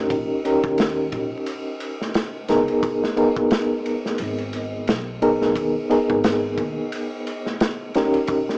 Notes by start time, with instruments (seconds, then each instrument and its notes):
Already playing: upright bass G2, reed electric piano C#4 D#4 G4 A#4
0.10 upright bass A#1, kick, ride
0.45 reed electric piano C#4 D#4 G4 A#4, ride
0.64 upright bass D#2, kick
0.78 snare, ride
1.12 upright bass A#1, kick, ride
1.46 ride
1.80 ride
2.01 snare
2.14 snare, ride
2.48 upright bass C#2, reed electric piano B3 D#4 G#4 A#4, snare, ride
2.68 ride
2.83 kick, ride
3.04 snare
3.16 reed electric piano B3 D#4 G#4 A#4, ride
3.36 kick
3.51 snare, ride
3.86 ride
4.06 snare
4.18 upright bass G#1, ride
4.38 ride
4.53 ride
4.88 upright bass B1, snare, ride
5.22 reed electric piano B3 D#4 G#4 A#4, ride
5.42 snare
5.55 upright bass D#2, kick, ride
5.90 reed electric piano B3 D#4 G#4 A#4, ride
6.10 upright bass G#1, kick
6.24 snare, ride
6.58 upright bass D#2, kick, ride
6.92 ride
7.27 ride
7.46 snare
7.60 snare, ride
7.94 reed electric piano C#4 D#4 G4 A#4, snare, ride
8.14 ride
8.28 kick, ride
8.49 snare